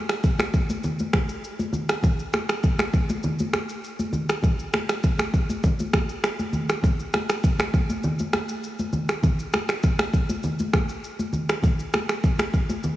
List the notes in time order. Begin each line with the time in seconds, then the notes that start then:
0.09 finger snap, cross-stick, shaker
0.23 kick, shaker
0.39 finger snap, cross-stick, high conga, shaker
0.54 kick, shaker
0.70 high conga, shaker
0.83 low conga, shaker
0.99 high conga, shaker
1.13 finger snap, kick, cross-stick, high conga, shaker
1.29 shaker
1.44 shaker
1.59 high conga, shaker
1.73 high conga, low conga, shaker
1.89 finger snap, cross-stick, shaker
2.02 kick, low conga, shaker
2.19 shaker
2.33 finger snap, cross-stick, high conga, shaker
2.49 finger snap, cross-stick, shaker
2.63 kick, shaker
2.79 finger snap, cross-stick, high conga, shaker
2.93 kick, shaker
3.09 high conga, shaker
3.23 low conga, shaker
3.39 high conga, shaker
3.53 finger snap, cross-stick, high conga, shaker
3.69 shaker
3.84 shaker
3.99 high conga, shaker
4.13 high conga, low conga, shaker
4.29 finger snap, cross-stick, shaker
4.42 kick, low conga, shaker
4.59 shaker
4.73 finger snap, cross-stick, high conga, shaker
4.89 finger snap, cross-stick, shaker
5.03 kick, shaker
5.18 finger snap, cross-stick, high conga, shaker
5.34 kick, shaker
5.49 high conga, shaker
5.63 kick, low conga, shaker
5.79 high conga, shaker
5.93 finger snap, kick, cross-stick, high conga, shaker
6.09 shaker
6.24 finger snap, cross-stick, shaker
6.39 high conga, shaker
6.53 high conga, low conga, shaker
6.69 finger snap, cross-stick, shaker
6.82 kick, low conga, shaker
7.00 shaker
7.13 finger snap, cross-stick, high conga, shaker
7.29 finger snap, cross-stick, shaker
7.44 kick, shaker
7.59 finger snap, cross-stick, high conga, shaker
7.74 kick, shaker
7.90 high conga, shaker
8.03 low conga, shaker
8.19 high conga, shaker
8.33 finger snap, cross-stick, high conga, shaker
8.49 shaker
8.64 shaker
8.79 high conga, shaker
8.93 high conga, low conga, shaker
9.09 finger snap, cross-stick, shaker
9.23 kick, low conga, shaker
9.39 shaker
9.53 finger snap, cross-stick, high conga, shaker
9.69 finger snap, cross-stick, shaker
9.83 kick, shaker
9.98 finger snap, cross-stick, high conga, shaker
10.13 kick, shaker
10.29 high conga, shaker
10.43 low conga, shaker
10.59 high conga, shaker
10.73 finger snap, kick, cross-stick, high conga, shaker
10.89 shaker
11.04 shaker
11.19 high conga, shaker
11.33 high conga, low conga, shaker
11.49 finger snap, cross-stick, shaker
11.62 kick, low conga, shaker
11.79 shaker
11.93 finger snap, cross-stick, high conga, shaker
12.09 finger snap, cross-stick, shaker
12.23 kick, shaker
12.39 finger snap, cross-stick, high conga, shaker
12.54 kick, shaker
12.69 high conga, shaker
12.83 low conga, shaker